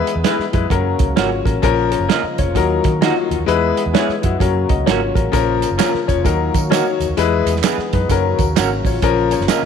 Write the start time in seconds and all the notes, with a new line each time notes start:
Already playing: E3 G#3 B3 E4 G#4 B4
0.07 closed hi-hat
0.16 E2
0.24 G#3 B3 E4 G#4 B4, snare, closed hi-hat
0.39 muted fingered electric bass stroke, snare
0.53 F#2 G#3 E4 B4, kick, closed hi-hat
0.70 F#2 C#3 F#3 A#3 C#4 F#4 A#4, kick, closed hi-hat
0.99 C#2, kick, closed hi-hat
1.16 G#1 A#3 C#4 F4 F#4 A#4 C#5, snare, closed hi-hat
1.45 A1 C#4 A#4, kick, closed hi-hat
1.62 A#1 C#3 F3 C#4 F4 A#4, kick, closed hi-hat
1.92 C#4 A#4, closed hi-hat
2.00 F#1
2.09 A#3 C#4 F4 A#4 D#5, snare, closed hi-hat
2.23 muted fingered electric bass stroke
2.38 F1 F4 C#5, kick, closed hi-hat
2.55 D#2 D#3 F#3 D#4 F#4 A#4, kick, closed hi-hat
2.84 D#3, kick, closed hi-hat
3.01 F#3 A#3 D#4 F4 F#4 A#4, snare, closed hi-hat
3.31 D#2, closed hi-hat
3.39 D#2
3.46 E2 E3 G#3 B3 E4 G#4 B4, closed hi-hat
3.77 closed hi-hat
3.86 E2
3.93 G#3 B3 E4 G#4 B4 C#5, snare, closed hi-hat
4.09 muted fingered electric bass stroke, snare
4.22 F#2 G#3 E4 F#4, kick, closed hi-hat
4.39 F#2 C#3 F#3 A#3 C#4 F#4 A#4, kick, closed hi-hat
4.69 C#2 F#4 D#5, kick, closed hi-hat
4.86 G#1 A#3 C#4 F4 F#4 A#4 C#5, snare, closed hi-hat
5.15 A1 C#4 A#4, kick, closed hi-hat
5.32 A#1 F3 C#4 F4 A#4, kick, closed hi-hat, tambourine
5.62 closed hi-hat, tambourine
5.71 F#1
5.77 F3 A#3 C#4 F4 A#4, snare, clap, closed hi-hat, tambourine
5.94 muted fingered electric bass stroke, snare
6.07 F1 F3 C#4 C#5, kick, closed hi-hat, tambourine
6.24 D#2 D#3 F#3 D#4 F#4 A#4, kick, closed hi-hat, tambourine
6.54 D#3, kick, closed hi-hat, tambourine
6.70 F#3 A#3 D#4 F#4 A#4 C#5, snare, clap, closed hi-hat, tambourine
7.00 D#2, closed hi-hat, tambourine
7.09 D#2
7.17 E2 E3 G#3 B3 E4 G#4 B4, closed hi-hat, tambourine
7.46 E2, closed hi-hat, tambourine
7.56 snare
7.63 B3 E4 G#4 B4, snare, clap, closed hi-hat, tambourine
7.78 muted fingered electric bass stroke, snare
7.93 F#2 D#4 B4, kick, closed hi-hat
8.08 F#2 C#3 F#3 A#3 C#4 F#4 A#4, kick, closed hi-hat, tambourine
8.39 D#2, kick, closed hi-hat, tambourine
8.56 G#1 A#3 C#4 F#4 A#4, snare, clap, closed hi-hat, tambourine
8.85 A1 F4 C#5, kick, open hi-hat, tambourine
9.02 A#1 F3 A#3 C#4 F4 A#4, kick, closed hi-hat, tambourine
9.31 F4 C#5, closed hi-hat, tambourine
9.40 F#1, snare
9.48 A#3 C#4 F4 A#4 D#5, snare, clap, closed hi-hat, tambourine